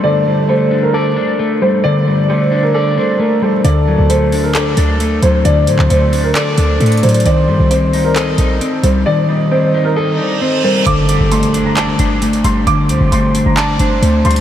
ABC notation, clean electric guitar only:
X:1
M:4/4
L:1/8
Q:1/4=133
K:Cdor
V:1 name="Clean electric guitar"
[D,G,A,Dd] G, A, D d D A, G, | D, G, A, D d D A, G, | D, ^F, A, D d D A, F, | D, ^F, A, D d D A, F, |
E, G, C E e E C G, | E, G, C E e E C G, | D, G, A, D d D A, G, | D, G, A, D d D A, G, |]